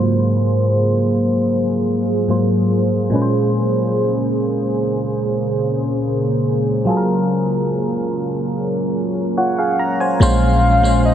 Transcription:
Already playing: G#2 F#3 A#3 F4 G#4 C5
2.28 G#2 F#3 A#3 F4 C5
3.10 A#2 C#3 G#3 C#4 C5
3.15 B4
3.22 C5
6.85 F#3 C#4 F4 G#4
6.90 A4
6.97 A#4
9.37 F4 C#5 F#5
9.58 G#4 F5
9.79 A#5
10.00 C5 G#5
10.20 A#1 A#2 G#3 A#3 C#4 C5 F5
10.82 A#2 G#3 C#4 C5
11.05 D#5

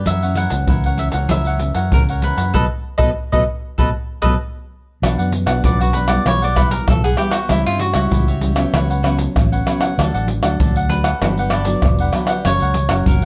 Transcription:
0.06 F#2 E3 A#3 C#4 E4 A#4 C#5 E5 F#5, pandeiro, shaker, surdo
0.22 E3 A#3 C#4 A#4 C#5 F#5, pandeiro, shaker
0.35 E4 A#4 C#5 F#5, pandeiro
0.50 C#2 E3 A#3 C#4, muted cavaquinho stroke, pandeiro, shaker
0.67 C#2 C#3 E4 A#4 C#5 F#5, pandeiro, shaker, surdo
0.84 A#4 C#5 F#5, pandeiro, shaker
0.98 E5, pandeiro, shaker
1.12 C#2 E3 A#3 C#4 A#4 C#5 F#5, pandeiro, shaker
1.29 C#2 F#2 E4 A#4 C#5 E5 F#5, pandeiro, shaker, surdo
1.45 A#4 C#5 F#5, pandeiro, shaker
1.59 E3 A#3 C#4, muted cavaquinho stroke, pandeiro, shaker
1.75 F#2 A#4 C#5 F#5, pandeiro, shaker
1.92 C#2 C#3 A#4, pandeiro, shaker, surdo
2.09 A#4 C#5 F#5, pandeiro, shaker
2.22 E3 A#3 C#4 E4 A#4 B4 C#5 F#5, pandeiro
2.37 F#2 A#4 C#5 F#5, pandeiro, shaker
2.54 B1 F#3 A3 B3 A4 B4 D#5, surdo
2.98 B1 F#3 A3 B3 A4 B4 D#5, surdo
3.32 B1 F#3 A3 B3 A4 B4 D#5, surdo
3.78 B1 F#3 A3 B3 A4 B4 D#5, surdo
4.22 B1 F#3 A3 B3 A4 B4 D#5, surdo
5.02 B1 B2 F#3 B3 D4 B4 D5 F#5, pandeiro, tamborim, shaker, surdo
5.18 F#2 B4 D5 F#5, pandeiro, shaker
5.32 muted cavaquinho stroke, pandeiro
5.46 B1 F#3 B3 D4 B4 D5 F#5, pandeiro, tamborim, shaker
5.64 B1 F#2 D4 B4 D5 F#5, pandeiro, shaker, surdo
5.80 F#4 B4 D5 F#5, pandeiro, shaker
5.93 F#3 B3 D4 B4, pandeiro
6.08 G3 B3 E4 B4 D5 F#5, pandeiro, tamborim, shaker
6.26 B1 E3 E4 G4 B4 C#5 F#5, pandeiro, tamborim, shaker, surdo
6.42 G4 B4 D5 F#5, pandeiro, shaker
6.56 G3 B3 E4 G4 B4 F#5, pandeiro, tamborim, shaker, surdo
6.70 A#4, muted cavaquinho stroke, pandeiro, shaker
6.87 B1 E3 A4, pandeiro, tamborim, shaker, surdo
7.04 G4 G#4 B4 F#5, pandeiro, shaker
7.17 G3 B3 E4 G4 B4 F#5, pandeiro, tamborim
7.31 F#4 G4 B4 F#5, pandeiro, tamborim, shaker
7.49 C#2 C#3 G3 C#4 E4 G4 C#5 E5, pandeiro, tamborim, shaker, surdo
7.66 G2 F4 G4 C#5 E5, pandeiro, shaker
7.79 F#4, muted cavaquinho stroke, pandeiro
7.94 C#2 G3 C#4 E4 F#4 G4 C#5 E5, pandeiro, tamborim, shaker
8.11 C#2 C#3 E4 G4 C#5 E5, pandeiro, shaker, surdo
8.28 G4 C#5 E5, pandeiro, shaker
8.41 G3 C#4 E4, pandeiro, shaker
8.56 F#3 B3 C#4 G4 C#5 E5, pandeiro, tamborim, shaker
8.73 C#2 C#3 F#4 B4 C#5 F#5, pandeiro, tamborim, shaker, surdo
8.90 B4 C#5 F#5, pandeiro, shaker
9.03 F#3 B3 C#4 F#4 B4 C#5 F#5, pandeiro, tamborim, shaker
9.18 muted cavaquinho stroke, pandeiro, shaker
9.36 A1 C#3, pandeiro, tamborim, shaker, surdo
9.52 B4 C#5 F#5, pandeiro, shaker
9.66 F#3 B3 C#4 F#4 B4 C#5 F#5, pandeiro, tamborim
9.81 B4 C#5 F#5, pandeiro, tamborim, shaker
9.97 D2 D3 F#3 A3 D4 A4 D5 F#5, pandeiro, tamborim, shaker, surdo
10.14 A1 A4 D5 F#5, pandeiro, shaker
10.28 muted cavaquinho stroke, pandeiro
10.43 D2 F#3 A3 D4 A4 D5 F#5, pandeiro, tamborim, shaker
10.60 D2 A2 D4 A4 D5 F#5, pandeiro, shaker, surdo
10.76 A4 D5 F#5, pandeiro, shaker
10.89 F#3 A3 D4 B4, pandeiro
11.04 A4 D5 F#5, pandeiro, tamborim, shaker
11.21 G1 G2 F#3 B3 D4 G4 B4 F#5, pandeiro, tamborim, shaker, surdo
11.37 G4 B4 F#5, pandeiro, shaker
11.50 D4 G4 B4 D5 F#5, pandeiro, tamborim
11.65 F#3 B3 D4, muted cavaquinho stroke, pandeiro, shaker
11.82 F1 D3, pandeiro, tamborim, shaker, surdo
11.99 G4 B4 F#5, pandeiro, shaker
12.13 F#3 B3 D4 G4 B4 F#5, pandeiro, tamborim, shaker
12.27 G4 B4 F#5, pandeiro, tamborim, shaker
12.45 F#1 F#2 F#3 A#3 C#4 F#4 A#4 C#5 F#5, pandeiro, tamborim, shaker, surdo
12.60 C#2 A#4 C#5 F#5, pandeiro, shaker
12.74 muted cavaquinho stroke, pandeiro, shaker
12.89 F#1 F#3 A#3 C#4 A#4 C#5 F#5, pandeiro, tamborim, shaker
13.06 F#1 C#3 F#4 A#4 C#5 F#5, pandeiro, shaker, surdo

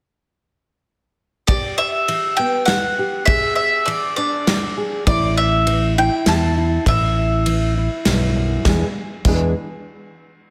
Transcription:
1.47 E2 G4 D5, kick, ride
1.78 E5
2.08 E3, ride
2.37 B3 G5
2.65 E3 F#5, snare, ride
2.99 G4
3.26 E2 G#4 E5, kick, ride
3.56 E5
3.86 E3 D5, ride
4.16 D4 D5
4.47 E3, snare, ride
4.77 G#4
5.07 A1 A2 E4 D5, kick, ride
5.37 E5
5.67 E3, ride
5.98 E4 G5
6.26 E2 E3 A5, snare, ride
6.57 E4
6.86 A1 A2 E4 E5, kick, ride
7.46 E3, ride
7.77 E4
8.05 B1 G2, snare, ride
8.36 F#2
8.65 E2 E3 G#3 D4 G#4, kick, snare
9.25 E2 E3 G#3 D4 G#4, kick, crash

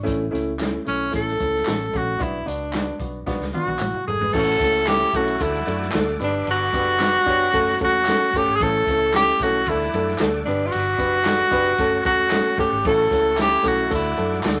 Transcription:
Already playing: D4
0.03 A3 C#4 E4, kick, closed hi-hat, tambourine
0.07 A1
0.31 C#2 A3 C#4 E4, closed hi-hat
0.35 tambourine
0.58 A3 C#4 E4, snare, clap, closed hi-hat, tambourine
0.85 B1 A3 C#4 E4, closed hi-hat, tambourine
1.12 A1 A3 C#4 E4, kick, closed hi-hat, tambourine
1.16 A4
1.28 snare
1.40 C#2 A3 C#4 E4, kick, closed hi-hat, tambourine
1.55 snare
1.65 A1 A3 C#4 F#4, snare, clap, closed hi-hat, tambourine
1.93 A#1 A3 C#4 F#4, kick, snare, closed hi-hat
2.19 B1 B3 D4 E4 F#4, kick, closed hi-hat
2.45 C#2 B3 D4 F#4, closed hi-hat, tambourine
2.73 B3 D4 F#4, snare, clap, closed hi-hat, tambourine
2.99 B1 B3 D4 F#4, kick, closed hi-hat, tambourine
3.26 B1 B3 D4 F#4, kick, snare, tambourine
3.40 C#2, snare
3.53 B3 D4 F#4 F#6, high tom, tambourine
3.66 B1, high tom
3.79 A1 E4, clap, mid tom, tambourine
3.94 F#4, mid tom
4.07 G#1 G#4 A4 G#6, floor tom
4.21 B4, floor tom
4.33 A1 C#3 A3 C#4 E4 F#4 A4 C#5 E5 A5 C#6 A6, kick, crash, tambourine
4.60 C#2 A3 C#4 E4 A4, kick, ride, tambourine
4.86 C#3 A3 C#4 E4 G4 A4 G6, snare, clap, ride, tambourine
5.13 B1 A3 C#4 E4 F#4 A4 F#6, kick, ride, tambourine
5.28 ride
5.40 D2 D3 A3 D4 E4 F#4 A4 D5 F#5 D6 E6, kick, ride, tambourine
5.54 snare
5.66 F#2 A3 D4 F#4 A4, ride, tambourine
5.82 snare
5.92 D2 A3 D4 F#4 A4, snare, clap, ride, tambourine
6.09 ride
6.19 G1 B3 D4 G4 B4 B5 D6, snare, ride, tambourine
6.24 D4
6.47 G1 D3 B3 A4 F#6, ride
6.51 F#4
6.73 F#1 B3 D4 G4 B4, kick, ride, tambourine
6.99 D3 B3 D4 G4 B4, snare, clap, ride, tambourine
7.26 F#1 B3 D4 G4 C#5, kick, ride, tambourine
7.41 ride
7.52 F#1 C#3 A3 C#4 F#4 A4 C#5 F#5 A5 C#6, kick, ride, tambourine
7.68 snare
7.78 E1 A3 C#4 F#4 A4, kick, ride, tambourine
7.83 F#4 F#6
8.05 A3 F#4, snare, clap, ride, tambourine
8.09 C#4 A4
8.21 ride
8.34 F#1 A3 C#4 F#4 G4 A4 G6, kick, ride
8.47 G#1
8.52 G#4 G#6
8.59 A1 A3 C#4 E4 A4 E5 A6, kick, ride, tambourine
8.87 C#2 A3 C#4 E4 A4, kick, ride, tambourine
9.13 A3 C#4 E4 G4 A4 G6, snare, clap, ride, tambourine
9.40 B1 A3 C#4 E4 F#4 F#6, kick, ride, tambourine
9.44 A4
9.66 D2 A3 D4 E4 F#4 A4 D5 F#5 D6 E6, kick, ride, tambourine
9.80 snare
9.93 F#2 A3 D4 F#4 A4, ride, tambourine
10.08 snare
10.18 D2 A3 D4 F#4 A4, snare, clap, ride, tambourine
10.34 ride
10.46 G1 B3 D4 G4 B4 B5 D6, snare, ride
10.67 F4 F6
10.71 G1 F#4 F#6, ride, tambourine
10.98 F#1 B3 D4 G4 B4, kick, ride, tambourine
11.25 B3 D4 G4 A4, snare, clap, ride, tambourine
11.51 F#1 B3 D4 G4 B4, kick, ride, tambourine
11.66 ride
11.78 F#1 A3 C#4 F#4 A4 C#5 F#5 A5 C#6, kick, ride, tambourine
12.05 E1 A3 C#4 F#4 A4 F#6, kick, ride, tambourine
12.30 A3 C#4 F#4 A4, snare, clap, ride, tambourine
12.46 ride
12.58 F#1 A3 C#4 F#4 G4 A4 G6, kick, snare, ride, tambourine
12.71 G#1
12.84 A1 C#3 A3 C#4 E4 F#4 A4 C#5 E5 A6, kick, ride
13.11 C#2 A3 C#4 E4 A4, kick, ride, tambourine
13.37 C#3 A3 C#4 E4 A4 G6, snare, clap, ride, tambourine
13.41 G4
13.63 B1 A3 C#4 E4 A4 F#6, kick, ride, tambourine
13.68 F#4
13.78 ride
13.89 D2 D3 A3 D4 F#4 A4 D5 F#5 D6 E6, kick, ride, tambourine
13.95 E4
14.17 F#2 A3 D4 F#4 A4, ride, tambourine
14.33 snare
14.43 D2 A3 D4 F#4 A4, snare, clap, ride, tambourine

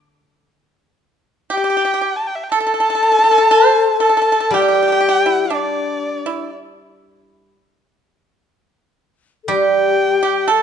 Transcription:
Already playing: A4
1.50 G4 G5
1.57 G4
1.64 G4
1.70 G4
1.77 G4
1.85 G4
1.94 G4
2.01 G4
2.16 A5
2.27 G5
2.35 E5
2.44 G5
2.52 A4 A5
2.60 A4
2.67 A4
2.74 A4
2.80 A4
2.90 A4
2.95 A4
3.03 A4
3.12 A4
3.19 A4
3.24 A4
3.31 A4
3.38 A4
3.51 C5
4.00 A4 A5
4.10 A4
4.17 A4
4.22 A4
4.32 A4
4.40 A4
4.50 G3 G4
4.55 G5
4.62 G4
4.68 G4
4.75 G4
4.82 G4
4.88 G4
4.92 G4
5.01 G4
5.09 G4
5.26 E4
5.45 E4
5.50 D4 D5
6.26 E4
9.44 A4
9.48 G3 G4
9.53 G5
10.23 G4
10.48 A4 A5

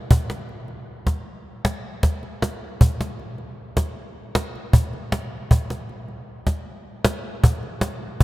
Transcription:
0.11 cajon bass
0.30 cajon slap
0.49 cajon slap
0.68 cajon slap
1.07 cajon bass, cajon slap
1.65 cajon slap
2.03 cajon bass, cajon slap
2.23 cajon slap
2.42 cajon slap
2.81 cajon bass
3.01 cajon slap
3.19 cajon slap
3.38 cajon slap
3.77 cajon bass, cajon slap
4.35 cajon slap
4.55 cajon slap
4.73 cajon bass
4.93 cajon slap
5.12 cajon slap
5.51 cajon bass
5.70 cajon slap
5.89 cajon slap
6.08 cajon slap
6.47 cajon bass, cajon slap
7.05 cajon slap
7.44 cajon bass
7.63 cajon slap
7.81 cajon slap
8.20 cajon bass

